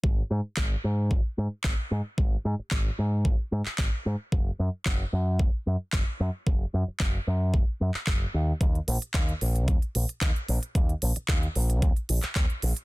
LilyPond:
<<
  \new Staff \with { instrumentName = "Picked electric bass" } { \clef bass \time 4/4 \key ees \mixolydian \tempo 4 = 112 aes,,8 aes,8 aes,,8 aes,8 aes,,8 aes,8 aes,,8 aes,8 | aes,,8 aes,8 aes,,8 aes,8 aes,,8 aes,8 aes,,8 aes,8 | ges,,8 ges,8 ges,,8 ges,8 ges,,8 ges,8 ges,,8 ges,8 | ges,,8 ges,8 ges,,8 ges,8 ges,,8 ges,8 ges,,8 ees,8 |
ees,8 bes,,8 ees,8 bes,,8 ees,8 bes,,8 ees,8 bes,,8 | ees,8 bes,,8 ees,8 bes,,8 ees,8 bes,,8 ees,8 bes,,8 | }
  \new DrumStaff \with { instrumentName = "Drums" } \drummode { \time 4/4 bd4 <hc bd>4 bd4 <hc bd>4 | bd4 <hc bd>4 bd8. hc16 <hc bd>4 | bd4 <hc bd>4 bd4 <hc bd>4 | bd4 <hc bd>4 bd8. hc16 <hc bd>4 |
<hh bd>16 hh16 hho16 hh16 <hc hh bd>16 hh16 hho16 hh16 <hh bd>16 hh16 hho16 hh16 <hc hh bd>16 hh16 hho16 hh16 | <hh bd>16 hh16 hho16 hh16 <hc hh bd>16 hh16 hho16 hh16 <hh bd>16 hh16 hho16 <hc hh>16 <hc hh bd>16 hh16 hho16 hh16 | }
>>